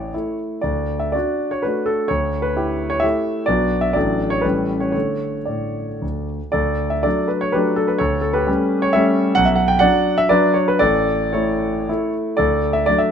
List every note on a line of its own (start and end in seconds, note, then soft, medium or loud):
0.00 0.16 A1 soft
0.00 0.14 E4 soft
0.00 0.38 C#5 soft
0.00 0.15 D5 medium
0.14 0.60 A3 soft
0.14 0.60 E4 soft
0.61 1.13 D2 soft
0.61 1.00 D5 medium
1.00 1.14 E5 medium
1.12 1.61 D4 soft
1.12 1.61 F#4 soft
1.12 1.52 D5 medium
1.51 1.64 C#5 medium
1.62 2.07 A3 soft
1.62 2.07 D4 soft
1.62 2.07 F#4 soft
1.62 1.87 B4 medium
1.86 2.10 A4 medium
2.08 2.55 D2 soft
2.08 2.44 C#5 medium
2.42 2.91 B4 medium
2.56 2.99 E4 soft
2.56 2.99 G4 soft
2.90 3.02 C#5 medium
3.00 3.44 A3 soft
3.00 3.44 E4 soft
3.00 3.44 G4 soft
3.00 3.47 E5 medium
3.46 3.94 B1 medium
3.46 3.91 B3 soft
3.46 3.92 D4 soft
3.46 3.92 F#4 soft
3.46 3.82 D5 medium
3.81 3.94 E5 medium
3.93 4.42 A1 soft
3.93 4.40 F#3 soft
3.93 4.41 D4 soft
3.93 4.41 A4 soft
3.93 4.31 D5 medium
4.30 4.43 C#5 medium
4.41 4.93 A1 soft
4.41 4.90 G3 soft
4.41 4.90 C#4 soft
4.41 4.91 A4 soft
4.41 4.80 B4 medium
4.80 4.91 C#5 soft
4.92 5.32 D3 soft
4.92 5.37 A3 soft
4.92 5.37 A4 soft
4.92 5.47 C#5 medium
5.45 5.86 A2 soft
5.45 6.28 D5 soft
6.02 6.38 D2 soft
6.52 7.03 D2 soft
6.52 6.89 A4 soft
6.52 6.91 D5 medium
6.90 7.04 E5 medium
7.03 7.51 F#3 soft
7.03 7.51 A3 soft
7.03 7.51 D4 soft
7.03 7.28 A4 soft
7.03 7.30 D5 medium
7.28 7.42 B4 soft
7.41 7.54 C#5 medium
7.52 7.97 F#3 soft
7.52 7.97 A3 soft
7.52 7.98 D4 soft
7.52 7.76 G4 soft
7.52 7.77 B4 medium
7.76 7.89 A4 medium
7.87 8.00 B4 medium
7.98 8.46 D2 soft
7.98 8.20 A4 medium
7.98 8.23 C#5 medium
8.21 8.35 A4 soft
8.33 8.80 G4 soft
8.33 8.82 B4 medium
8.47 8.90 G3 soft
8.47 8.91 A3 soft
8.47 8.91 C#4 soft
8.82 8.92 C#5 medium
8.93 9.33 G3 medium
8.93 9.34 A3 medium
8.93 9.34 C#4 medium
8.93 9.34 C#5 medium
8.93 9.37 E5 medium
9.35 9.81 B1 medium
9.35 9.47 F#5 medium
9.45 9.58 E5 medium
9.56 9.69 F#5 medium
9.68 9.81 G5 medium
9.79 10.27 F#3 soft
9.79 10.28 D4 medium
9.79 10.16 D5 medium
9.79 10.18 F#5 medium
10.18 10.31 E5 medium
10.29 10.77 F#3 medium
10.29 10.78 D4 medium
10.29 10.54 B4 medium
10.29 10.55 D5 medium
10.54 10.68 C#5 medium
10.68 10.81 B4 medium
10.79 11.33 A1 medium
10.79 11.30 A4 medium
10.79 11.34 D5 medium
11.33 11.84 A3 soft
11.33 11.84 E4 soft
11.33 12.09 A4 soft
11.33 12.13 C#5 medium
11.89 12.35 A3 soft
11.89 12.35 E4 medium
12.37 12.86 D2 medium
12.37 12.72 A4 medium
12.37 12.74 D5 medium
12.73 12.87 E5 medium
12.86 13.11 F#3 soft
12.86 13.11 A3 soft
12.86 13.11 D4 soft
12.86 12.99 D5 medium
12.98 13.11 E5 medium